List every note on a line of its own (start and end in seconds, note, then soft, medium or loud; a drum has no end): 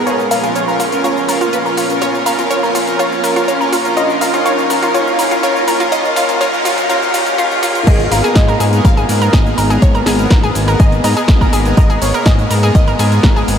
0.00 riser medium
0.06 7.83 A#2 medium
0.06 7.83 F3 medium
0.06 7.83 C#4 medium
0.06 0.19 C#4 medium
0.06 7.83 F4 medium
0.06 0.10 F4 medium
0.06 0.19 F4 medium
0.06 0.19 A#4 medium
0.06 0.32 C#5 loud
0.06 7.83 F5 medium
0.06 closed hi-hat medium
0.06 cabasa soft
0.20 cabasa soft
0.31 0.42 C#4 medium
0.31 0.42 F4 medium
0.31 0.42 A#4 medium
0.31 0.36 A#4 medium
0.31 0.56 F5 loud
0.31 open hi-hat loud
0.31 cabasa medium
0.44 0.55 C#4 medium
0.44 0.46 F4 medium
0.44 0.55 F4 medium
0.44 0.55 A#4 loud
0.44 closed hi-hat medium
0.44 cabasa soft
0.55 1.01 C#5 loud
0.55 closed hi-hat medium
0.55 cabasa soft
0.68 0.79 C#4 medium
0.68 0.79 F4 medium
0.68 0.79 A#4 medium
0.68 0.73 A#4 medium
0.68 cabasa soft
0.80 0.83 F4 medium
0.80 open hi-hat loud
0.80 cabasa medium
0.92 1.02 C#4 medium
0.92 1.02 F4 medium
0.92 1.02 A#4 loud
0.92 closed hi-hat medium
0.92 cabasa soft
1.04 1.16 C#4 medium
1.04 1.07 F4 medium
1.04 1.16 F4 medium
1.04 1.16 A#4 medium
1.04 1.27 C#5 medium
1.04 closed hi-hat medium
1.04 cabasa soft
1.17 cabasa soft
1.28 1.39 C#4 medium
1.28 1.39 F4 medium
1.28 1.39 A#4 medium
1.28 1.34 A#4 medium
1.28 open hi-hat loud
1.28 cabasa medium
1.41 1.52 C#4 medium
1.41 1.52 F4 medium
1.41 1.44 F4 loud
1.41 1.52 A#4 loud
1.41 closed hi-hat medium
1.41 cabasa soft
1.53 2.03 B4 medium
1.53 closed hi-hat medium
1.53 cabasa soft
1.65 1.77 C#4 medium
1.65 1.77 F4 medium
1.65 1.77 A#4 medium
1.65 1.70 A#4 medium
1.65 cabasa soft
1.77 1.80 F4 medium
1.77 open hi-hat loud
1.77 cabasa medium
1.90 2.00 C#4 medium
1.90 2.00 F4 medium
1.90 2.00 A#4 loud
1.90 closed hi-hat medium
1.90 cabasa soft
2.02 2.14 C#4 medium
2.02 2.14 F4 medium
2.02 2.05 F4 medium
2.02 2.14 A#4 medium
2.02 2.27 C#5 loud
2.02 closed hi-hat medium
2.02 cabasa soft
2.15 cabasa soft
2.26 2.37 C#4 medium
2.26 2.37 F4 medium
2.26 2.37 A#4 medium
2.26 2.31 A#4 medium
2.26 2.51 F5 loud
2.26 open hi-hat loud
2.26 cabasa medium
2.39 2.50 C#4 medium
2.39 2.50 F4 medium
2.39 2.41 F4 medium
2.39 2.50 A#4 loud
2.39 closed hi-hat medium
2.39 cabasa soft
2.50 2.96 C#5 loud
2.50 closed hi-hat soft
2.50 cabasa soft
2.63 2.74 C#4 medium
2.63 2.74 F4 medium
2.63 2.74 A#4 medium
2.63 2.68 A#4 medium
2.63 cabasa soft
2.75 2.78 F4 medium
2.75 open hi-hat loud
2.75 cabasa medium
2.87 2.97 C#4 medium
2.87 2.97 F4 medium
2.87 2.97 A#4 loud
2.87 closed hi-hat medium
2.87 cabasa soft
2.99 3.11 C#4 medium
2.99 3.11 F4 medium
2.99 3.02 F4 loud
2.99 3.11 A#4 medium
2.99 3.22 C#5 medium
2.99 closed hi-hat medium
2.99 cabasa soft
3.12 cabasa soft
3.24 3.34 C#4 medium
3.24 3.34 F4 medium
3.24 3.29 A#4 medium
3.24 3.34 A#4 medium
3.24 open hi-hat loud
3.24 cabasa medium
3.36 3.48 C#4 loud
3.36 3.48 F4 medium
3.36 3.39 F4 loud
3.36 3.48 A#4 loud
3.36 closed hi-hat medium
3.36 cabasa soft
3.48 3.98 C#5 medium
3.48 closed hi-hat medium
3.48 cabasa soft
3.61 3.72 C#4 medium
3.61 3.72 F4 medium
3.61 3.72 A#4 medium
3.61 3.65 A#4 medium
3.61 cabasa soft
3.72 3.75 F4 loud
3.72 open hi-hat loud
3.72 cabasa medium
3.85 3.95 C#4 medium
3.85 3.95 F4 medium
3.85 3.95 A#4 loud
3.85 closed hi-hat medium
3.85 cabasa soft
3.97 4.09 C#4 medium
3.97 4.00 F4 loud
3.97 4.09 F4 medium
3.97 4.09 A#4 medium
3.97 4.22 D#5 loud
3.97 closed hi-hat medium
3.97 cabasa soft
4.10 cabasa soft
4.21 4.32 C#4 medium
4.21 4.32 F4 medium
4.21 4.26 A#4 medium
4.21 4.32 A#4 medium
4.21 4.32 F5 loud
4.21 open hi-hat loud
4.21 cabasa medium
4.34 4.44 C#4 medium
4.34 4.37 F4 loud
4.34 4.44 F4 medium
4.34 4.44 A#4 loud
4.34 closed hi-hat medium
4.34 cabasa soft
4.46 4.58 C#4 medium
4.46 4.49 F4 loud
4.46 4.58 F4 medium
4.46 4.58 A#4 medium
4.46 4.93 C#5 loud
4.46 closed hi-hat medium
4.46 cabasa soft
4.59 cabasa soft
4.70 4.81 C#4 medium
4.70 4.81 F4 medium
4.70 4.75 A#4 medium
4.70 4.81 A#4 medium
4.70 open hi-hat loud
4.70 cabasa medium
4.83 4.93 C#4 loud
4.83 4.85 F4 loud
4.83 4.93 F4 medium
4.83 4.93 A#4 loud
4.83 closed hi-hat medium
4.83 cabasa soft
4.94 5.06 C#4 medium
4.94 4.97 F4 loud
4.94 5.06 F4 medium
4.94 5.06 A#4 medium
4.94 5.17 C#5 medium
4.94 closed hi-hat medium
4.94 cabasa soft
5.07 cabasa soft
5.19 5.29 C#4 medium
5.19 5.29 F4 medium
5.19 5.24 A#4 medium
5.19 5.29 A#4 medium
5.19 open hi-hat loud
5.19 cabasa medium
5.31 5.41 C#4 loud
5.31 5.34 F4 loud
5.31 5.41 F4 medium
5.31 5.41 A#4 loud
5.31 closed hi-hat medium
5.31 cabasa soft
5.43 5.55 C#4 medium
5.43 5.46 F4 loud
5.43 5.55 F4 medium
5.43 5.55 A#4 medium
5.43 5.94 C#5 medium
5.43 closed hi-hat medium
5.43 cabasa soft
5.56 cabasa soft
5.67 5.78 C#4 medium
5.67 5.78 F4 medium
5.67 5.78 A#4 medium
5.67 5.73 A#4 medium
5.67 open hi-hat loud
5.67 cabasa medium
5.80 5.90 C#4 loud
5.80 5.90 F4 medium
5.80 5.83 F4 loud
5.80 5.90 A#4 loud
5.80 closed hi-hat medium
5.80 cabasa soft
5.92 6.04 C#4 medium
5.92 5.95 F4 loud
5.92 6.04 F4 medium
5.92 6.04 A#4 medium
5.92 6.15 D#5 loud
5.92 closed hi-hat medium
5.92 noise sweep medium
5.92 cabasa soft
6.05 cabasa soft
6.16 6.28 C#4 medium
6.16 6.28 F4 medium
6.16 6.19 F4 loud
6.16 6.28 A#4 medium
6.16 6.39 F5 loud
6.16 open hi-hat loud
6.16 cabasa medium
6.29 closed hi-hat medium
6.29 cabasa soft
6.41 6.53 C#4 medium
6.41 6.44 F4 loud
6.41 6.53 F4 medium
6.41 6.53 A#4 medium
6.41 6.88 C#5 loud
6.41 closed hi-hat medium
6.41 cabasa soft
6.54 cabasa soft
6.65 6.77 C#4 medium
6.65 6.68 F4 loud
6.65 6.77 F4 medium
6.65 6.77 A#4 medium
6.65 open hi-hat loud
6.65 cabasa medium
6.78 closed hi-hat medium
6.78 cabasa soft
6.89 7.02 C#4 medium
6.89 6.92 F4 loud
6.89 7.02 F4 medium
6.89 7.02 A#4 medium
6.89 7.12 C#5 medium
6.89 closed hi-hat medium
6.89 cabasa soft
7.02 cabasa soft
7.14 7.26 C#4 medium
7.14 7.17 F4 loud
7.14 7.26 F4 medium
7.14 7.26 A#4 loud
7.14 open hi-hat loud
7.14 cabasa medium
7.26 closed hi-hat medium
7.26 cabasa soft
7.38 7.50 C#4 medium
7.38 7.41 F4 loud
7.38 7.50 F4 medium
7.38 7.50 A#4 medium
7.38 closed hi-hat medium
7.38 cabasa soft
7.51 cabasa soft
7.63 7.75 C#4 medium
7.63 7.66 F4 loud
7.63 7.75 F4 medium
7.63 7.75 A#4 medium
7.63 open hi-hat loud
7.63 cabasa medium
7.75 closed hi-hat medium
7.75 cabasa soft
7.87 8.08 G#1 loud
7.87 13.59 G#3 medium
7.87 13.59 A#3 medium
7.87 7.99 B3 medium
7.87 13.59 B3 medium
7.87 7.99 G#4 medium
7.87 7.90 G#4 loud
7.87 7.99 A#4 medium
7.87 8.10 D#5 loud
7.87 kick loud
7.87 closed hi-hat medium
7.87 crash loud
7.87 cabasa soft
8.00 closed hi-hat soft
8.00 cabasa soft
8.11 8.22 G#1 medium
8.11 8.22 B3 medium
8.11 8.22 G#4 medium
8.11 8.16 A#4 medium
8.11 8.22 A#4 medium
8.11 8.37 F5 loud
8.11 open hi-hat loud
8.11 cabasa medium
8.24 8.35 B3 medium
8.24 8.27 G#4 loud
8.24 8.35 G#4 medium
8.24 8.35 A#4 loud
8.24 closed hi-hat medium
8.24 cabasa soft
8.35 8.56 G#2 loud
8.35 8.86 D#5 loud
8.35 kick loud
8.35 snare loud
8.35 closed hi-hat medium
8.35 cabasa soft
8.48 8.60 B3 medium
8.48 8.60 G#4 medium
8.48 8.53 A#4 medium
8.48 8.60 A#4 medium
8.48 closed hi-hat soft
8.48 cabasa soft
8.60 8.81 G#2 medium
8.60 8.63 G#4 loud
8.60 open hi-hat loud
8.60 cabasa medium
8.73 8.83 B3 medium
8.73 8.83 G#4 medium
8.73 8.83 A#4 loud
8.73 closed hi-hat medium
8.73 cabasa soft
8.85 9.05 G#1 loud
8.85 8.97 B3 medium
8.85 8.97 G#4 medium
8.85 8.90 A#4 medium
8.85 8.97 A#4 medium
8.85 9.35 F5 loud
8.85 kick loud
8.85 closed hi-hat medium
8.85 cabasa soft
8.97 9.00 G#4 loud
8.97 closed hi-hat soft
8.97 cabasa soft
9.09 9.30 G#2 medium
9.09 9.20 B3 loud
9.09 9.20 G#4 medium
9.09 9.20 A#4 loud
9.09 open hi-hat loud
9.09 cabasa medium
9.22 9.33 B3 medium
9.22 9.33 G#4 medium
9.22 9.26 A#4 medium
9.22 9.33 A#4 medium
9.22 closed hi-hat medium
9.22 cabasa soft
9.33 9.54 G#1 medium
9.33 9.36 G#4 loud
9.33 9.84 D#5 loud
9.33 kick loud
9.33 snare loud
9.33 closed hi-hat medium
9.33 cabasa soft
9.46 9.57 B3 medium
9.46 9.57 G#4 medium
9.46 9.57 A#4 medium
9.46 cabasa soft
9.58 9.78 G#1 medium
9.58 9.63 A#4 medium
9.58 open hi-hat loud
9.58 cabasa medium
9.70 9.80 B3 medium
9.70 9.73 G#4 loud
9.70 9.80 G#4 medium
9.70 9.80 A#4 medium
9.70 closed hi-hat medium
9.70 cabasa soft
9.82 10.03 G#1 medium
9.82 9.94 B3 medium
9.82 9.94 G#4 medium
9.82 9.94 A#4 medium
9.82 10.83 C#5 loud
9.82 kick loud
9.82 closed hi-hat medium
9.82 cabasa soft
9.95 9.99 A#4 medium
9.95 closed hi-hat soft
9.95 cabasa soft
10.06 10.27 G#1 medium
10.06 10.17 B3 medium
10.06 10.10 G#4 loud
10.06 10.17 G#4 medium
10.06 10.17 A#4 medium
10.06 snare medium
10.06 open hi-hat loud
10.06 cabasa medium
10.19 10.31 B3 loud
10.19 10.31 G#4 medium
10.19 10.31 A#4 loud
10.19 closed hi-hat medium
10.19 cabasa soft
10.30 10.52 G#1 loud
10.30 10.36 A#4 medium
10.30 kick loud
10.30 snare loud
10.30 closed hi-hat medium
10.30 cabasa soft
10.43 10.55 B3 medium
10.43 10.46 G#4 loud
10.43 10.55 G#4 medium
10.43 10.55 A#4 medium
10.43 closed hi-hat soft
10.43 cabasa soft
10.55 10.76 G#1 medium
10.55 open hi-hat loud
10.55 cabasa medium
10.68 10.78 B3 loud
10.68 10.78 G#4 medium
10.68 10.78 A#4 loud
10.68 10.73 A#4 medium
10.68 closed hi-hat medium
10.68 cabasa soft
10.80 11.00 G#1 medium
10.80 10.92 B3 medium
10.80 10.92 G#4 medium
10.80 10.83 G#4 loud
10.80 10.92 A#4 loud
10.80 11.03 D#5 loud
10.80 kick loud
10.80 closed hi-hat medium
10.80 cabasa soft
10.92 closed hi-hat soft
10.92 cabasa soft
11.04 11.15 G#2 medium
11.04 11.15 B3 medium
11.04 11.15 G#4 medium
11.04 11.15 A#4 loud
11.04 11.09 A#4 medium
11.04 11.50 D#5 medium
11.04 open hi-hat loud
11.04 cabasa medium
11.17 11.28 B3 medium
11.17 11.20 G#4 loud
11.17 11.28 G#4 medium
11.17 11.28 A#4 medium
11.17 closed hi-hat medium
11.17 cabasa soft
11.28 11.49 G#1 medium
11.28 kick loud
11.28 snare loud
11.28 closed hi-hat medium
11.28 cabasa soft
11.41 11.53 B3 medium
11.41 11.53 G#4 medium
11.41 11.53 A#4 medium
11.41 11.46 A#4 medium
11.41 kick medium
11.41 cabasa soft
11.53 11.74 G#1 medium
11.53 11.56 G#4 loud
11.53 open hi-hat loud
11.53 cabasa medium
11.65 11.76 B3 medium
11.65 11.76 G#4 medium
11.65 11.76 A#4 medium
11.65 closed hi-hat medium
11.65 cabasa soft
11.77 11.98 G#1 loud
11.77 11.89 B3 medium
11.77 11.89 G#4 medium
11.77 11.82 A#4 medium
11.77 11.89 A#4 medium
11.77 12.00 D#5 loud
11.77 kick loud
11.77 closed hi-hat medium
11.77 cabasa soft
11.90 11.93 G#4 loud
11.90 closed hi-hat soft
11.90 cabasa soft
12.02 12.12 G#1 medium
12.02 12.12 B3 medium
12.02 12.12 G#4 medium
12.02 12.12 A#4 medium
12.02 12.24 C#5 loud
12.02 open hi-hat loud
12.02 cabasa medium
12.14 12.26 B3 loud
12.14 12.26 G#4 medium
12.14 12.19 A#4 medium
12.14 12.26 A#4 loud
12.14 closed hi-hat medium
12.14 cabasa soft
12.26 12.47 G#2 loud
12.26 12.29 G#4 loud
12.26 12.74 D#5 loud
12.26 kick loud
12.26 snare loud
12.26 closed hi-hat medium
12.26 cabasa soft
12.39 12.50 B3 medium
12.39 12.50 G#4 medium
12.39 12.50 A#4 medium
12.39 closed hi-hat soft
12.39 cabasa soft
12.51 12.71 G#2 medium
12.51 12.55 A#4 medium
12.51 open hi-hat loud
12.51 cabasa medium
12.63 12.73 B3 medium
12.63 12.66 G#4 loud
12.63 12.73 G#4 medium
12.63 12.73 A#4 loud
12.63 closed hi-hat medium
12.63 cabasa soft
12.75 12.95 G#1 loud
12.75 12.87 B3 medium
12.75 12.87 G#4 medium
12.75 12.87 A#4 medium
12.75 13.44 D#5 loud
12.75 kick loud
12.75 closed hi-hat medium
12.75 cabasa soft
12.88 12.92 A#4 medium
12.88 closed hi-hat soft
12.88 cabasa soft
12.99 13.20 G#2 medium
12.99 13.10 B3 loud
12.99 13.10 G#4 medium
12.99 13.02 G#4 loud
12.99 13.10 A#4 loud
12.99 open hi-hat loud
12.99 cabasa medium
13.12 13.23 B3 medium
13.12 13.23 G#4 medium
13.12 13.23 A#4 medium
13.12 closed hi-hat medium
13.12 cabasa soft
13.23 13.44 G#1 medium
13.23 13.29 A#4 medium
13.23 kick loud
13.23 snare loud
13.23 closed hi-hat medium
13.23 cabasa soft
13.36 13.48 B3 medium
13.36 13.39 G#4 loud
13.36 13.48 G#4 medium
13.36 13.48 A#4 medium
13.36 cabasa soft
13.48 13.59 G#1 loud
13.48 open hi-hat loud
13.48 cabasa medium